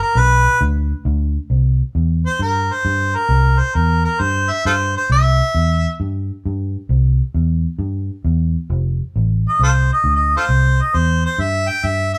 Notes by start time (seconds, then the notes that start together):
0.03 A#4
0.15 B1 B4
0.61 D2
1.05 D2
1.50 C2
1.95 E2
2.26 C5
2.39 G2 A#4
2.73 C5
2.85 G2
3.16 A#4
3.29 C2
3.59 C5
3.75 E2 A#4
4.05 A#4
4.20 G2 C5
4.51 E5
4.65 G2 F4 A4 C5
4.97 C5
5.10 C2 E5
5.55 E2
6.00 G2
6.46 G2
6.89 C2
7.34 E2
7.79 G2
8.25 E2
8.70 F1
9.16 A1
9.49 D#5
9.59 C2 F4 A4 C5
9.93 D#5
10.04 D2
10.16 D#5
10.37 F4 A4 C5
10.49 C2
10.82 D#5
10.94 E2 C5
11.26 C5
11.38 G2 E5
11.69 G5
11.84 G2 E5
12.13 E5